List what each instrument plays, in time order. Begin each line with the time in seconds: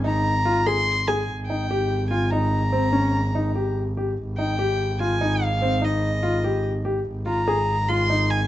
Already playing: double bass G#1
0.04 grand piano D#4, violin A#5
0.45 grand piano F4
0.66 grand piano G#4, violin C6
1.08 grand piano G#4, violin G#5
1.28 double bass G#1
1.47 grand piano D#4, violin G5
1.71 grand piano G4
2.10 grand piano F4, violin G#5
2.31 grand piano D#4, violin A#5
2.72 grand piano C4
2.93 grand piano C#4
3.35 grand piano D#4
3.55 grand piano G4
3.97 grand piano G4
4.18 double bass G#1
4.38 grand piano D#4, violin G5
4.59 grand piano G4
5.00 grand piano F4, violin G#5
5.21 grand piano D#4
5.44 violin F5
5.62 grand piano C4
5.82 grand piano D#4, violin D#5
6.23 grand piano F4
6.44 grand piano G4
6.85 grand piano G4
7.05 double bass G#1
7.26 grand piano F4, violin A#5
7.48 grand piano G#4
7.88 grand piano F4, violin C6
8.10 grand piano D#4
8.31 violin G#5